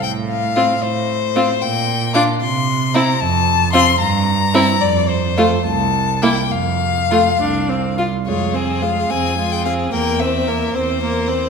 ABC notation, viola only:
X:1
M:6/8
L:1/16
Q:3/8=73
K:F
V:1 name="Viola"
z4 C z4 z C z | z4 D z4 z C z | z4 C z4 z C z | z4 A, z4 z B, z |
z4 A, z D2 C2 F2 | [K:Fm] A,2 C2 A,2 C2 A,2 C2 | B,2 C2 B,2 C2 B,2 C2 |]